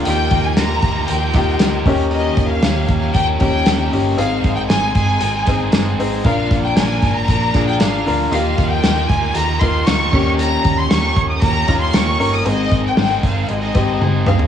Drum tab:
CC |----------------|----------------|----------------|----------------|
HH |x-x-x-x-x-x-x-o-|x-x-x-x-x-x-x-o-|x-x-x-x-x-x-x-o-|x-x-x-x-x-x-x-o-|
SD |----o-----o-o---|----o-------o---|----o-----o-o---|----o-----o-o---|
T1 |----------------|----------------|----------------|----------------|
T2 |----------------|----------------|----------------|----------------|
FT |----------------|----------------|----------------|----------------|
BD |--o---o---o---o-|--o---o-o-o-----|--o---o---o-----|o-o---o-o-o-----|

CC |--------------x-|----------------|----------------|
HH |x-x-x-x-x-x-x---|x-x-x-x-x-x-x-o-|x-x-x-x-x-x-----|
SD |----o-------o---|----o-------o---|----o-----------|
T1 |----------------|----------------|------------o---|
T2 |----------------|----------------|--------------o-|
FT |----------------|----------------|---------------o|
BD |--o---o---o---o-|--o---o-o-o-----|--o---o---o-----|